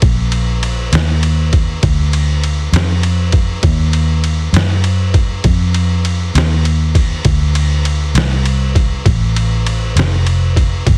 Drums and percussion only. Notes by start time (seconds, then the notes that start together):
0.02 kick, ride
0.32 ride
0.63 ride
0.93 snare, ride
1.23 ride
1.53 kick, ride
1.83 kick, ride
2.13 ride
2.44 ride
2.74 snare, ride
3.03 ride
3.32 kick, ride
3.63 kick, ride
3.93 ride
4.24 ride
4.54 snare, ride
4.84 ride
5.14 kick, ride
5.44 kick, ride
5.74 ride
6.05 ride
6.35 snare, ride
6.65 ride
6.95 kick, ride
7.25 kick, ride
7.55 ride
7.85 ride
8.15 snare, ride
8.46 ride
8.75 kick, ride
9.06 kick, ride
9.36 ride
9.67 ride
9.97 snare, ride
10.27 ride
10.56 kick, ride
10.87 kick, ride